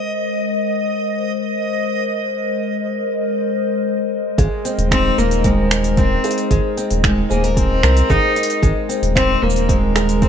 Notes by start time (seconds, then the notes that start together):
Already playing: G#3 A#4 C5 D#5
4.38 G#1 G#3 G#4, kick, open hi-hat, shaker
4.65 C4, open hi-hat, shaker
4.78 D#1, open hi-hat
4.91 C4 D#4, finger snap, kick, open hi-hat, shaker
5.18 D#1 A#3 A#4, shaker
5.31 open hi-hat, shaker
5.44 G#3 C4 C5, kick, open hi-hat, shaker
5.71 A#4, finger snap, open hi-hat, shaker
5.84 open hi-hat, shaker
5.97 C4, kick, open hi-hat, shaker
6.24 D#4 G#4, open hi-hat, shaker
6.31 open hi-hat
6.38 open hi-hat, shaker
6.51 G#1 G#3, kick, open hi-hat, shaker
6.77 C4, open hi-hat, shaker
6.91 D#1, open hi-hat, shaker
7.04 G#3 D#4, finger snap, kick, open hi-hat, shaker
7.30 D#1 A#3 G#4 C5, shaker
7.44 A#4, open hi-hat, shaker
7.57 C4, kick, open hi-hat, shaker
7.83 C2 A#4, finger snap, shaker
7.97 open hi-hat, shaker
8.10 G#1 C4 D#4 G#4, kick, open hi-hat, shaker
8.36 D#4, open hi-hat
8.43 open hi-hat
8.50 open hi-hat, shaker
8.62 G#1 G#3, kick, open hi-hat, shaker
8.89 C4, open hi-hat, shaker
9.03 D#1, open hi-hat, shaker
9.15 C4 D#4 C5, finger snap, kick, open hi-hat, shaker
9.42 D#1 A#3 A#4
9.50 shaker
9.56 open hi-hat, shaker
9.69 G#3 C4, kick, open hi-hat, shaker
9.96 G#4 A#4, finger snap, open hi-hat, shaker
10.09 open hi-hat, shaker
10.22 C4, kick, open hi-hat, shaker